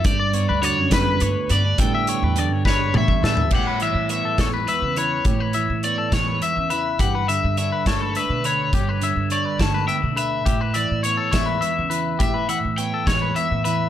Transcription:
<<
  \new Staff \with { instrumentName = "Overdriven electric guitar" } { \time 6/8 \key a \mixolydian \tempo 4. = 69 d''4 cis''8 b'4 d''8 | g''4. cis''8 e''8 e''8 | fis''8 e''8 e''8 a'8 b'8 cis''8~ | cis''4 d''8 cis''8 e''8 e''8 |
fis''8 e''8 e''8 a'8 b'8 cis''8~ | cis''4 d''8 a''8 g''8 e''8~ | e''8 d''8 cis''8 e''4. | e''8 fis''8 g''8 cis''8 e''8 e''8 | }
  \new Staff \with { instrumentName = "Clean electric guitar" } { \time 6/8 \key a \mixolydian g'16 d''16 cis''16 b'16 d''16 cis''16 b'8 cis''8 b'8 | a'16 e''16 cis''16 b'16 d''16 cis''16 b'8 cis''8 a'8 | g'16 b'16 e''8 cis''16 a'16 cis''16 b'16 e''8 b'8 | g'16 b'16 e''8 cis''16 a'16 cis''16 b'16 e''8 b'8 |
g'16 b'16 e''8 cis''16 b'16 cis''16 b'16 e''8 b'8 | g'16 b'16 e''8 cis''16 b'16 cis''16 b'16 e''8 b'8 | g'16 b'16 e''8 cis''16 a'16 cis''16 b'16 e''8 b'8 | g'16 b'16 e''8 cis''16 a'16 cis''16 b'16 e''8 b'8 | }
  \new Staff \with { instrumentName = "Clean electric guitar" } { \clef bass \time 6/8 \key a \mixolydian << { r8 b16 d'16 fis'8 b4 b16 d'16 | <d g b d'>8 b8 d'8 g4 b8~ | b4 b4 b4~ | b4 b4 b4~ |
b4 d'4 d'4 | r4 d'4 b16 d'8. | r4 b4 b4~ | b4 b4 b4 | } \\ { g,4 d4 d,4 | a,4 d4 e,4 | a,8 e4 e,4 e8 | a,8 e4 e,4 e8 |
g,8 d4 d,4 d8 | g,8 d4 d,4 d8 | a,8 e4 e,4 e8 | a,8 e4 e,4 e8 | } >> }
  \new Staff \with { instrumentName = "Upright bass" } { \clef bass \time 6/8 \key a \mixolydian g,8. d,8 fis,8. g,16 r16 g,8 | a,8. e,8 g,8. a,16 r16 a,8 | a,8. a,8 r16 a,8 r16 cis8. | a,8. a,8 r16 a,8 r16 cis8. |
g,8. g,8 r16 g,8 r16 b,8. | g,8. g,8 r16 g,8 r16 b,8. | a,8. a,8 r16 a,8 r16 cis8. | a,8. a,8 r16 a,8 r16 a,8. | }
  \new DrumStaff \with { instrumentName = "Drums" } \drummode { \time 6/8 <hh bd>8 hh8 hh8 <hh bd sn>8 hh8 hh8 | <hh bd>8 hh8 hh8 <bd sn>8 toml16 bd16 sn16 tomfh16 | <cymc bd>8 hh8 hh8 <hh bd sn>8 hh8 hh8 | <hh bd>8 hh8 hh8 <hh bd sn>8 hh8 hh8 |
<hh bd>8 hh8 hh8 <hh bd sn>8 hh8 hh8 | <hh bd>8 hh8 hh8 <hh bd sn>8 hh8 hh8 | <hh bd>8 hh8 hh8 <hh bd sn>8 hh8 hh8 | <hh bd>8 hh8 hh8 <hh bd sn>8 hh8 hh8 | }
>>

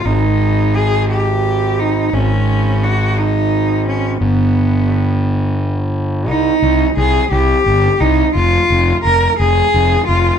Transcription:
<<
  \new Staff \with { instrumentName = "Cello" } { \time 6/8 \key c \minor \tempo 4. = 58 ees'4 aes'8 g'4 ees'8 | des'4 ges'8 ees'4 des'8 | b2 r4 | ees'4 aes'8 g'4 ees'8 |
f'4 bes'8 aes'4 f'8 | }
  \new Staff \with { instrumentName = "Fingered electric bass" } { \clef bass \time 6/8 \key c \minor aes,,2. | aes,,2. | g,,2. | c,8 c,8 c,8 c,8 g,,8 c,8 |
f,,8 f,,8 f,,8 f,,8 f,,8 f,,8 | }
>>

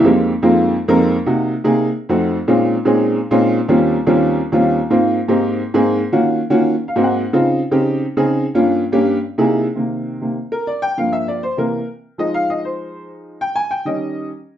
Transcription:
\new Staff \with { instrumentName = "Upright piano" } { \time 4/4 \key f \minor \tempo 4 = 198 << { r1 | r1 | r1 | r1 |
r1 | r2 r8 f''8 ges''4 | r1 | r1 |
\key c \minor r2 r8 bes'8 d''8 g''8 | f''8 e''8 d''8 c''8 bes'4 r4 | ees''8 f''8 ees''8 c''4. r4 | g''8 aes''8 g''8 ees''4. r4 | } \\ { <f, aes bes c' ees' g'>4 r16 <f, aes bes c' ees' f'>4 r8 <f, aes bes c' ees' bes'>8. r8 | <c bes ees' ges'>4 r16 <c bes ees' aes'>8. r8. <f, a c' ees' ges'>8. r8 | <bes, aes c' des' ees' f'>4 r16 <bes, aes c' des' ees' aes'>4 r8 <bes, aes c' des' ees' f'>8. r8 | <ees, g bes c' des' f'>4 r16 <ees, g bes c' des' f'>4 r8 <ees, g bes c' des' f'>8. r8 |
<aes, bes c' ees' f'>4 r16 <aes, bes c' ees' g'>4 r8 <aes, bes c' ees' aes'>8. r8 | <ees bes des' f' ges'>4 r16 <ees bes des' f' ges'>8. r8. <aes, bes c' ees' ges'>8. r8 | <des c' ees' f'>4 r16 <des c' ees' g'>4 r8 <des c' ees' aes'>8. r8 | <g, bes des' f'>4 r16 <g, bes des' g'>8. r8. <c bes dis' e' gis'>8. r8 |
<c ees bes>4. <c ees bes>8 r2 | <g, f bes>4. r8 <c e bes>8 r4. | <f aes ees'>1 | r4. <ees g des'>4. r4 | } >> }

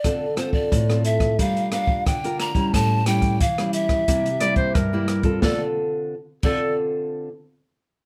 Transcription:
<<
  \new Staff \with { instrumentName = "Pan flute" } { \time 4/4 \key d \minor \tempo 4 = 89 d''8 c''16 d''8. e''8 f''8 f''8 g''8 bes''8 | a''8 g''8 f''8 e''2 r8 | d''16 r4 r16 d''8 r2 | }
  \new Staff \with { instrumentName = "Clarinet" } { \time 4/4 \key d \minor r1 | r2 r8 d''16 c''16 bes'4 | a'8 r4 a'8 r2 | }
  \new Staff \with { instrumentName = "Nylon-string guitar" } { \time 4/4 \key d \minor << { <c' f' a'>16 r16 <c' f' a'>8. <c' f' a'>8. <d' f' bes'>8 <d' f' bes'>8. <d' f' bes'>8 <g cis' e'>16~ | <g cis' e'>8 <g cis' e'>8 r16 <g cis' e'>8. <g bes e'>16 r16 <g bes e'>8 r16 <g bes e'>8 <c' f' a'>16~ | <c' f' a'>8 r2. r8 | } \\ { d4 a,4 g4 d4 | a,4 e4 c4 g,4 | <d c' f' a'>8 r4 <d c' f' a'>8 r2 | } >> }
  \new DrumStaff \with { instrumentName = "Drums" } \drummode { \time 4/4 <hh bd ss>8 <hh ss>16 bd16 <hh bd>16 <hh ss>16 hh16 <hh bd ss>16 <hh bd>16 hh16 <hh ss>16 bd16 <hh bd ss>16 hh16 <hh ss>16 <hh bd>16 | <hh bd ss>8 <hh ss>16 <hh bd>16 <hh bd>16 <hh ss>16 hh16 <hh bd ss>16 <hh bd>16 hh16 <hh ss>16 <hh bd>16 <hh bd ss>8 <hh ss>16 <hh bd>16 | <bd sn>4 r8 <cymc bd>8 r4 r4 | }
>>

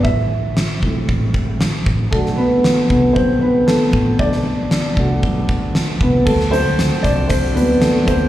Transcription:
<<
  \new Staff \with { instrumentName = "Upright piano" } { \time 4/4 \key b \phrygian \tempo 4 = 116 << { <e' e''>4 r2. | a'8 <b b'>4 <b b'>8 <c' c''>8 <b b'>8 <a a'>4 | <d' d''>2. r8 <b b'>8 | <a a'>8 c''4 <d' d''>8 <c' c''>8 <b b'>8 <a a'>8 <c' c''>8 | } \\ { r4. <a c' e'>4. r4 | <a d' fis'>1 | r4. <a d' fis'>2~ <a d' fis'>8 | r8 <fis c' e'>8 r4. <fis c' e'>8 r4 | } >> }
  \new Staff \with { instrumentName = "Tonewheel organ" } { \time 4/4 \key b \phrygian r1 | r1 | r1 | <d c' fis'>1 | }
  \new Staff \with { instrumentName = "Picked electric bass" } { \clef bass \time 4/4 \key b \phrygian a,,4. b,,8 a,,4. a,,8 | b,,4. c,8 b,,4. a,,8 | b,,4. c,8 b,,4. c,8 | d,8. d,8 r16 c,4 d,4 d,8 | }
  \new DrumStaff \with { instrumentName = "Drums" } \drummode { \time 4/4 bd4 sn8 bd8 bd8 bd8 sn8 bd8 | bd16 sn8. sn8 bd8 bd4 sn8 bd8 | bd16 sn8. sn8 bd8 bd8 bd8 sn8 bd8 | <cymc bd>16 sn16 hh8 <hh sn>8 <hh bd>8 <hh bd>8 hh8 <hh sn>8 <hh bd>8 | }
>>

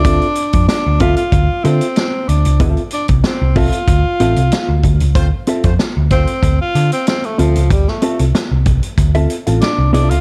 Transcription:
<<
  \new Staff \with { instrumentName = "Hollow-body jazz guitar" } { \time 4/4 \key d \minor \tempo 4 = 94 <c' f' a' e''>16 r4 r16 <c' f' a' e''>16 r8. <c' f' a' e''>16 r4 r16 | <c' f' a' e''>16 r4 r16 <c' f' a' e''>16 r8. <c' f' a' e''>16 r4 r16 | r8 <c' f' a' e''>16 r2 r8. <c' f' a' e''>16 r16 | r8 <c' f' a' e''>16 r4. <c' f' a' e''>16 r16 <c' f' a' f''>16 r8 <c' f' a' e''>16 r16 | }
  \new Staff \with { instrumentName = "Horn section" } { \time 4/4 \key d \minor r1 | r1 | <a c' f' c''>16 r8 <a c' f' c''>16 r8 <a c' f' c''>8 r2 | r1 | }
  \new Staff \with { instrumentName = "Tenor saxophone" } { \time 4/4 \key d \minor d'4 d'8 f'16 f'8. c'4 d'8 | r8 d'8 c'8 f'2 r8 | r4. c'8. f'8 c'16 c'16 a16 f8 | g16 a8 r2 r16 d'8 d'16 f'16 | }
  \new Staff \with { instrumentName = "Picked electric bass" } { \clef bass \time 4/4 \key d \minor d,16 r8 f,16 r16 d,8 r16 d,16 r16 d16 r8. d,16 cis,16 | d,16 r8 c,16 r16 c,8 r16 d,16 r16 a,,16 c,16 r16 d,16 d,16 cis,16 | d,16 r8 f,16 r16 d,8 r16 d,16 r16 d16 r8. d,16 cis,16 | d,16 r8 c,16 r16 c,8 r16 d,8 r16 a,,16 r16 c,16 c,16 cis,16 | }
  \new DrumStaff \with { instrumentName = "Drums" } \drummode { \time 4/4 <hh bd>16 hh16 hh16 <hh bd>16 <hh sn>8 <hh bd>16 hh16 <hh bd>8 hh16 hh16 <hh sn>8 hh16 hh16 | <hh bd>16 hh16 hh16 <hh bd>16 <hh sn>8 <hho bd>16 hh16 <hh bd>8 hh16 hh16 <hh sn>8 <hh bd>16 hh16 | <hh bd>8 hh16 <hh bd>16 <hh sn>8 <hh bd>16 hh16 <hh bd>8 hh16 hh16 <hh sn>16 hh16 hh16 hh16 | <hh bd>16 sn16 hh16 hh16 <hh sn>8 <hh bd>16 hh16 <hh bd>16 hh16 hh16 hh16 <hh sn>8 hh16 hh16 | }
>>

